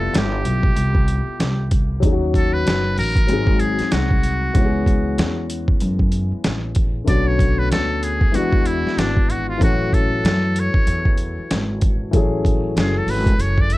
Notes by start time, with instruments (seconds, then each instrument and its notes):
Already playing: upright bass F1, upright piano G3 B3 E4 F4 A4, muted trumpet A4
0.13 upright bass G1, snare, closed hi-hat
0.18 muted trumpet G4
0.45 upright bass B1, closed hi-hat
0.63 kick
0.76 upright bass C2, closed hi-hat
0.95 kick
1.08 closed hi-hat
1.27 muted upright bass stroke
1.40 upright bass C2, snare, closed hi-hat
1.71 kick, closed hi-hat
2.00 upright bass D#2, upright piano F#3 C#4, kick, closed hi-hat
2.04 upright piano D#4 G#4
2.12 upright piano F#4
2.34 muted trumpet A4, kick, closed hi-hat
2.53 muted trumpet B4
2.66 upright bass F#1, snare, closed hi-hat
2.98 upright bass A1, muted trumpet A#4, open hi-hat
3.16 kick, closed hi-hat
3.27 upright bass G#1, upright piano F#3 G#3 C4, closed hi-hat
3.31 upright piano D#4 G#4
3.47 kick
3.60 muted trumpet G#4, closed hi-hat
3.79 muted upright bass stroke, snare, closed hi-hat
3.92 upright bass C2, muted trumpet F#4, snare, closed hi-hat
4.11 kick
4.23 closed hi-hat
4.53 upright bass C#2, upright piano E3 G#3 B3 C#4, kick, closed hi-hat
4.58 upright piano F#4
4.65 upright piano G#4
4.86 kick, closed hi-hat
5.18 upright bass E2, snare, closed hi-hat
5.50 closed hi-hat
5.68 kick
5.80 upright bass F#2, closed hi-hat
5.99 kick
6.12 closed hi-hat
6.32 muted upright bass stroke
6.44 upright bass A1, snare, closed hi-hat
6.75 kick, closed hi-hat
7.04 upright bass B1, upright piano D3 A3 B3, muted trumpet D5, kick, closed hi-hat
7.09 upright piano C#4 F#4
7.27 muted trumpet C#5
7.39 kick, closed hi-hat
7.59 muted trumpet B4
7.70 upright bass D2, muted trumpet A4, snare, closed hi-hat
8.03 muted trumpet G#4, closed hi-hat
8.21 kick
8.32 upright bass E2, upright piano E3 G#3 B3 D4, muted trumpet F#4, closed hi-hat
8.37 upright piano F#4
8.53 kick
8.65 muted trumpet E4, closed hi-hat
8.84 muted upright bass stroke, snare
8.97 upright bass G#1, muted trumpet D4, snare, closed hi-hat
9.17 kick
9.30 muted trumpet F#4, closed hi-hat
9.49 muted trumpet F4
9.58 upright bass A1, upright piano E3 F#3 A3, kick, closed hi-hat
9.62 upright piano C#4 F#4, muted trumpet F#4
9.93 muted trumpet A4, kick, closed hi-hat
10.24 upright bass F#2, snare, closed hi-hat
10.56 muted trumpet C#5, closed hi-hat
10.74 muted upright bass stroke, kick
10.87 upright bass E2, closed hi-hat
11.05 kick
11.18 closed hi-hat
11.38 muted upright bass stroke
11.51 upright bass G#1, snare, closed hi-hat
11.81 kick, closed hi-hat
12.11 upright bass A1, upright piano E3 F#3 A3 C#4, kick, closed hi-hat
12.16 upright piano G#4
12.45 kick, closed hi-hat
12.76 upright bass F#1, muted trumpet G#4, snare, closed hi-hat
12.98 muted trumpet A4
13.07 upright bass G#1, muted trumpet B4, open hi-hat
13.26 kick, closed hi-hat
13.38 upright bass F#1, muted trumpet C#5, closed hi-hat
13.58 muted trumpet D5, kick
13.70 muted trumpet E5, closed hi-hat